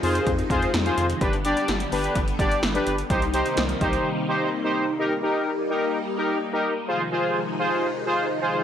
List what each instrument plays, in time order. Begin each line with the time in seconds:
Already playing: string machine C3 D#3 F3 G#3 D#4
0.03 analog synth bass F2, analog polysynth F4 G#4 C5, open hi-hat
0.15 closed hi-hat
0.27 analog synth bass F2, kick, closed hi-hat
0.39 closed hi-hat
0.50 analog synth bass F2, analog polysynth F4 G#4 C5, kick, closed hi-hat
0.62 closed hi-hat
0.74 analog synth bass F2, snare, closed hi-hat
0.86 analog polysynth F4 G#4 C5, closed hi-hat
0.97 analog synth bass F2, closed hi-hat
1.10 closed hi-hat
1.21 analog synth bass G1, string machine D3 G3 B3, analog polysynth D4 G4 B4, kick, closed hi-hat
1.33 closed hi-hat
1.45 analog polysynth D4 G4 D5, closed hi-hat
1.57 closed hi-hat
1.68 analog synth bass G1, snare, closed hi-hat
1.80 closed hi-hat
1.92 analog synth bass G1, analog polysynth D4 G4 B4, open hi-hat
2.04 closed hi-hat
2.15 analog synth bass G1, kick, closed hi-hat
2.28 closed hi-hat
2.39 analog synth bass G1, analog polysynth D4 G4 D5, kick, closed hi-hat
2.51 closed hi-hat
2.63 analog synth bass G1, snare, closed hi-hat
2.75 analog polysynth D4 G4 B4, closed hi-hat
2.87 analog synth bass G1, closed hi-hat
2.98 closed hi-hat
3.10 analog synth bass C2, string machine C3 D#3 G3 A#3 D#4, analog polysynth D#4 G4 C5, kick, closed hi-hat
3.22 closed hi-hat
3.34 analog polysynth D#4 G4 C5, closed hi-hat
3.46 closed hi-hat
3.57 analog synth bass C2, snare, closed hi-hat
3.69 closed hi-hat
3.81 analog synth bass C2, analog polysynth D#4 G4 C5, kick, closed hi-hat
3.93 closed hi-hat
4.28 analog polysynth D#4 G4 C5
4.64 analog polysynth D#4 G4 C5
4.99 string machine G3 A#3 D#4, analog polysynth D#4 G4 A#4
5.23 analog polysynth D#4 G4 A#4
5.70 analog polysynth D#4 G4 A#4
6.17 analog polysynth D#4 G4 A#4
6.53 analog polysynth D#4 G4 A#4
6.88 string machine C3 D#3 F3 G#3 D#4, analog polysynth F4 G#4 C5
7.12 analog polysynth F4 G#4 C5
7.59 analog polysynth F4 G#4 C5
8.06 analog polysynth F4 G#4 C5
8.42 analog polysynth F4 G#4 C5